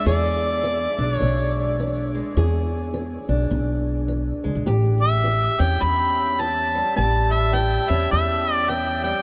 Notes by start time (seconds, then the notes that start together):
Already playing: G#3
0.06 E2 G#4 D5
0.63 E3
0.99 B1 D4
1.15 C#5
1.20 B1 B2
1.80 E3
2.15 G#3
2.37 E2 G#4
2.94 E3
3.29 B1 D4
3.50 B1 B2
4.08 E3
4.44 C#2 G#3
4.55 B1
4.66 A1 A2 G4
5.01 E5
5.24 E3
5.59 E2 C#4 G5
5.80 E2 B5
6.39 E3 A5
6.75 G3
6.96 A1 A2 G4 A5
7.31 E5
7.53 E3 G5
7.90 E2 C#4 E5
8.11 E2 E5
8.53 D5
8.69 E3 G5
9.04 G3 G5